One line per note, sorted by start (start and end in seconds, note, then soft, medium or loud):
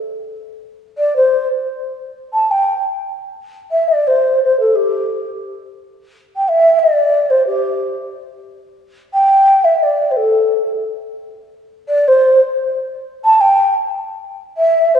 0.98 1.14 D5 medium
1.16 1.48 C5 medium
2.34 2.53 A5 medium
2.51 2.85 G5 medium
3.71 3.90 E5 medium
3.88 4.09 D5 medium
4.07 4.40 C5 medium
4.44 4.57 C5 medium
4.60 4.77 A4 medium
4.76 5.26 G4 medium
6.37 6.50 G5 medium
6.49 6.81 E5 medium
6.79 7.32 D5 medium
7.30 7.46 C5 medium
7.47 7.93 G4 medium
9.14 9.66 G5 loud
9.65 9.84 E5 medium
9.83 10.13 D5 medium
10.11 10.19 C5 soft
10.17 10.70 A4 medium
11.88 12.09 D5 loud
12.08 12.41 C5 medium
13.25 13.42 A5 loud
13.41 13.74 G5 medium
14.58 14.96 E5 loud
14.95 15.00 C5 medium